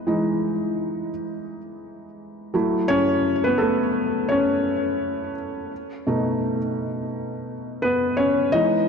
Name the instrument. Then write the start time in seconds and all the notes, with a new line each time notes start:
felt piano
Already playing: E3 G#3 B3 D#4 B4
0.07 E3 G#3 D#4
2.54 F#3 A3 E4
2.88 C#4 C#5
3.44 B3 B4
3.58 A3 A4
4.29 C#4 C#5
6.07 B2 A3 D#4
7.82 B3 B4
8.17 C#4 C#5
8.52 E3 G#3 D#4 D#5